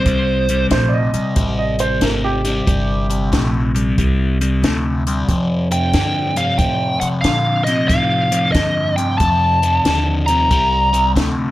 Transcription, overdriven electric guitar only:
0.06 0.45 C3 medium
0.06 0.45 G3 medium
0.50 0.70 C3 medium
0.50 0.70 G3 medium
0.72 1.10 C3 medium
0.72 1.10 A3 medium
1.14 1.34 C3 medium
1.14 1.34 G3 medium
1.36 1.75 C3 medium
1.36 1.75 G3 medium
1.79 2.00 C3 medium
1.79 2.00 G3 medium
2.02 2.41 C3 medium
2.02 2.41 A3 medium
2.45 2.65 C3 medium
2.45 2.65 G3 medium
2.67 3.05 C3 medium
2.67 3.06 G3 medium
3.10 3.30 C3 medium
3.10 3.30 G3 medium
3.32 3.71 C3 medium
3.32 3.71 A3 medium
3.75 3.95 C3 medium
3.75 3.95 G3 medium
3.98 4.37 C3 medium
3.98 4.37 G3 medium
4.41 4.61 C3 medium
4.41 4.61 G3 medium
4.64 5.02 C3 medium
4.64 5.02 A3 medium
5.07 5.27 C3 medium
5.07 5.27 G3 medium
5.29 5.67 F2 medium
5.29 5.67 C3 medium
5.71 5.91 F2 medium
5.71 5.92 C3 medium
5.94 6.32 F2 medium
5.94 6.32 D3 medium
6.36 6.57 F2 medium
6.36 6.57 C3 medium
6.59 6.97 F2 medium
6.59 6.98 C3 medium
7.01 7.22 F2 medium
7.01 7.22 C3 medium
7.25 7.63 F2 medium
7.25 7.63 D3 medium
7.67 7.87 F2 medium
7.67 7.88 C3 medium
7.88 8.27 F2 medium
7.88 8.28 C3 medium
8.31 8.52 F2 medium
8.31 8.52 C3 medium
8.54 8.93 F2 medium
8.54 8.93 D3 medium
8.98 9.18 F2 medium
8.98 9.18 C3 medium
9.20 9.59 F2 medium
9.20 9.59 C3 medium
9.62 9.83 F2 medium
9.62 9.83 C3 medium
9.86 10.24 F2 medium
9.86 10.24 D3 medium
10.29 10.49 F2 medium
10.29 10.49 C3 medium
10.50 10.89 C3 medium
10.50 10.89 G3 medium
10.93 11.14 C3 medium
10.93 11.14 G3 medium
11.15 11.51 C3 medium
11.15 11.51 A3 medium

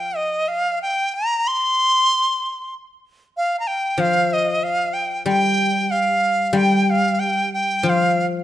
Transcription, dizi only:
0.00 0.18 G5 medium
0.16 0.50 D#5 medium
0.48 0.79 F5 medium
0.82 1.16 G5 medium
1.14 1.49 A#5 medium
1.48 2.74 C6 medium
3.37 3.59 F5 medium
3.60 3.69 A#5 medium
3.68 4.02 G5 medium
4.00 4.35 F5 medium
4.33 4.65 D#5 medium
4.64 4.95 F5 medium
4.94 5.26 G5 medium
5.27 5.92 G5 medium
5.91 6.59 F5 medium
6.57 6.92 G5 medium
6.90 7.21 F5 medium
7.20 7.52 G5 medium
7.54 7.91 G5 medium
7.89 8.26 F5 medium

